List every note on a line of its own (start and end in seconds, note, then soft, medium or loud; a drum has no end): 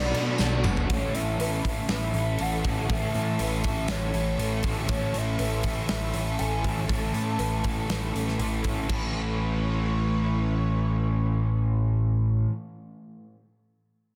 0.00 0.12 B1 medium
0.00 0.37 B2 medium
0.00 0.87 B2 medium
0.00 0.16 F#3 medium
0.00 0.88 F#3 medium
0.00 0.14 B3 medium
0.00 0.16 B3 medium
0.00 0.88 B3 loud
0.00 0.13 D4 medium
0.00 0.15 D4 medium
0.00 0.14 F#4 medium
0.00 0.86 A4 medium
0.00 0.40 B4 loud
0.00 0.61 D5 loud
0.00 0.86 F#5 medium
0.00 0.86 B5 medium
0.00 tambourine soft
0.13 0.36 B2 medium
0.13 0.38 F#3 medium
0.13 0.39 B3 medium
0.13 0.40 D4 medium
0.13 0.41 F#4 medium
0.13 tambourine soft
0.13 crash medium
0.18 0.40 B3 medium
0.38 0.62 B1 loud
0.38 0.87 B2 loud
0.38 0.88 F#3 medium
0.38 0.65 F#3 medium
0.38 0.63 B3 loud
0.38 0.88 B3 medium
0.38 0.62 D4 loud
0.38 0.89 D4 medium
0.38 0.64 A4 loud
0.38 snare medium
0.38 tambourine loud
0.43 0.89 F#4 medium
0.51 tambourine soft
0.63 0.87 F#1 loud
0.63 0.88 F#3 medium
0.63 0.88 B3 medium
0.63 0.87 D4 medium
0.63 0.89 F#4 medium
0.63 mid tom loud
0.63 tambourine medium
0.76 floor tom medium
0.76 tambourine soft
0.88 1.11 A1 loud
0.88 2.67 A2 medium
0.88 2.88 A2 medium
0.88 2.66 E3 medium
0.88 1.40 E3 medium
0.88 2.65 A3 medium
0.88 1.41 A3 loud
0.88 2.64 C#4 medium
0.88 2.63 E4 loud
0.88 1.39 A4 medium
0.88 8.87 A4 medium
0.88 1.16 C#5 loud
0.88 8.86 E5 medium
0.88 8.86 C#6 medium
0.88 kick loud
0.88 open hi-hat medium
0.93 1.42 C#4 medium
0.93 1.43 A4 medium
1.14 1.36 A1 medium
1.14 1.89 E5 medium
1.14 open hi-hat medium
1.38 1.60 A1 medium
1.38 2.40 E3 medium
1.38 1.69 A3 medium
1.38 1.64 B4 medium
1.38 open hi-hat medium
1.42 1.67 C#4 medium
1.42 1.66 A4 medium
1.65 1.86 A1 medium
1.65 2.17 C#4 medium
1.65 1.89 A4 medium
1.65 2.16 A4 medium
1.65 kick medium
1.65 open hi-hat medium
1.69 2.19 A3 medium
1.89 2.11 A1 loud
1.89 2.39 B4 medium
1.89 2.43 E5 loud
1.89 snare loud
1.89 open hi-hat medium
2.13 2.36 A1 medium
2.13 2.44 A4 medium
2.13 open hi-hat medium
2.18 2.42 A3 medium
2.18 2.43 C#4 medium
2.39 2.61 A1 medium
2.39 2.90 E3 medium
2.39 2.90 A3 medium
2.39 2.88 A4 medium
2.39 2.92 F#5 loud
2.39 open hi-hat medium
2.43 2.91 C#4 medium
2.43 2.92 A4 medium
2.63 2.87 A1 medium
2.63 2.87 A2 medium
2.63 2.88 E3 medium
2.63 2.89 A3 medium
2.63 2.90 C#4 medium
2.63 2.91 E4 medium
2.63 2.88 F#4 medium
2.63 kick medium
2.63 open hi-hat medium
2.88 3.11 A1 loud
2.88 4.66 A2 medium
2.88 4.86 A2 medium
2.88 4.66 E3 medium
2.88 3.39 E3 loud
2.88 4.64 A3 medium
2.88 3.40 A3 medium
2.88 4.64 C#4 medium
2.88 3.41 C#4 loud
2.88 4.63 E4 loud
2.88 3.43 A4 medium
2.88 3.40 E5 medium
2.88 kick loud
2.88 open hi-hat medium
2.92 3.42 A4 loud
3.14 3.37 A2 loud
3.14 open hi-hat medium
3.39 3.61 A1 medium
3.39 4.38 E3 medium
3.39 3.68 A3 medium
3.39 3.66 C#4 medium
3.39 3.64 A4 medium
3.39 3.64 B4 medium
3.39 open hi-hat medium
3.64 3.87 A1 loud
3.64 4.15 C#4 medium
3.64 3.88 A4 medium
3.64 4.13 A4 medium
3.64 3.91 E5 loud
3.64 kick medium
3.64 open hi-hat medium
3.68 4.17 A3 medium
3.88 4.11 A1 loud
3.88 4.36 B4 medium
3.88 4.64 C#5 loud
3.88 snare loud
3.88 open hi-hat medium
4.13 4.36 A1 medium
4.13 4.39 C#4 medium
4.13 4.41 A4 medium
4.13 open hi-hat medium
4.17 4.38 A3 medium
4.37 4.61 A1 medium
4.37 4.86 E3 medium
4.37 4.88 A3 medium
4.37 4.89 C#4 medium
4.37 4.88 A4 loud
4.37 open hi-hat medium
4.42 4.89 A4 medium
4.63 4.86 A1 medium
4.63 4.88 A2 medium
4.63 4.89 E3 medium
4.63 4.90 A3 medium
4.63 4.91 C#4 medium
4.63 4.92 E4 medium
4.63 4.87 F#4 medium
4.63 kick medium
4.63 open hi-hat medium
4.86 5.11 A1 loud
4.86 6.87 A2 medium
4.86 6.65 A2 medium
4.86 5.36 E3 medium
4.86 6.65 E3 medium
4.86 5.38 A3 loud
4.86 5.39 C#4 loud
4.86 5.41 A4 medium
4.86 5.40 A4 loud
4.86 5.19 C#5 medium
4.86 kick loud
4.86 open hi-hat medium
4.90 6.64 A3 medium
4.90 6.63 C#4 medium
4.90 6.62 E4 medium
5.14 5.36 A1 medium
5.14 5.88 E5 loud
5.14 open hi-hat medium
5.37 5.61 A1 medium
5.37 6.39 E3 medium
5.37 5.67 A3 medium
5.37 5.65 C#4 medium
5.37 5.63 A4 medium
5.37 5.63 B4 medium
5.37 open hi-hat medium
5.63 5.86 A1 medium
5.63 6.17 A3 medium
5.63 6.16 C#4 medium
5.63 5.89 A4 medium
5.63 6.13 A4 medium
5.63 kick medium
5.63 open hi-hat medium
5.89 6.11 A1 medium
5.89 6.38 B4 medium
5.89 6.40 E5 medium
5.89 snare loud
5.89 open hi-hat medium
6.14 6.36 A1 medium
6.14 6.41 C#4 medium
6.14 6.42 A4 medium
6.14 open hi-hat medium
6.18 6.40 A3 medium
6.38 6.62 A1 medium
6.38 6.88 E3 medium
6.38 6.88 A3 medium
6.38 6.89 C#4 medium
6.38 6.88 A4 medium
6.38 6.91 G#5 medium
6.38 open hi-hat medium
6.42 6.90 A4 medium
6.62 6.87 A1 medium
6.62 6.87 A2 medium
6.62 6.87 E3 medium
6.62 6.89 A3 medium
6.62 6.89 C#4 medium
6.62 6.90 E4 medium
6.62 6.87 F#4 medium
6.62 kick medium
6.62 open hi-hat medium
6.87 7.11 A1 loud
6.87 8.62 A2 medium
6.87 7.63 A2 medium
6.87 8.62 E3 medium
6.87 7.36 E3 medium
6.87 8.63 A3 medium
6.87 7.38 A3 medium
6.87 8.62 C#4 medium
6.87 7.39 C#4 loud
6.87 8.61 E4 medium
6.87 7.39 A4 medium
6.87 7.40 A4 medium
6.87 8.39 A5 loud
6.87 kick loud
6.87 open hi-hat medium
7.14 7.36 A2 medium
7.14 open hi-hat soft
7.38 7.61 A1 medium
7.38 7.88 E3 medium
7.38 7.65 A3 medium
7.38 7.63 C#4 medium
7.38 7.62 A4 medium
7.38 7.63 B4 medium
7.38 open hi-hat medium
7.63 7.86 A1 medium
7.63 8.15 A3 medium
7.63 8.13 C#4 medium
7.63 8.11 A4 medium
7.63 7.89 A4 medium
7.63 kick medium
7.63 open hi-hat medium
7.88 8.11 A1 medium
7.88 8.39 B4 medium
7.88 snare loud
7.88 open hi-hat medium
8.12 8.37 A1 medium
8.12 8.38 A3 medium
8.12 8.39 C#4 medium
8.12 8.40 A4 medium
8.12 open hi-hat soft
8.28 snare soft
8.38 8.61 A1 medium
8.38 8.87 E3 medium
8.38 8.88 A3 medium
8.38 8.88 C#4 medium
8.38 8.65 A4 medium
8.38 8.89 A4 medium
8.38 open hi-hat medium
8.62 8.87 A1 medium
8.62 8.86 A2 medium
8.62 8.87 E3 medium
8.62 8.88 A3 medium
8.62 8.87 C#4 medium
8.62 8.87 E4 medium
8.62 8.89 F#4 medium
8.62 kick medium
8.62 open hi-hat medium
8.88 12.45 A1 medium
8.88 12.48 A2 medium
8.88 12.48 A2 loud
8.88 12.49 E3 loud
8.88 12.50 E3 medium
8.88 12.50 A3 medium
8.88 12.46 A3 medium
8.88 12.51 A3 medium
8.88 12.50 C#4 medium
8.88 12.51 E4 medium
8.88 12.47 E4 medium
8.88 9.64 A4 medium
8.88 12.52 A4 medium
8.88 12.46 B4 medium
8.88 12.47 C#5 medium
8.88 12.47 C#6 medium
8.88 kick loud
8.88 crash medium
8.92 12.52 C#4 medium
8.92 12.53 E4 medium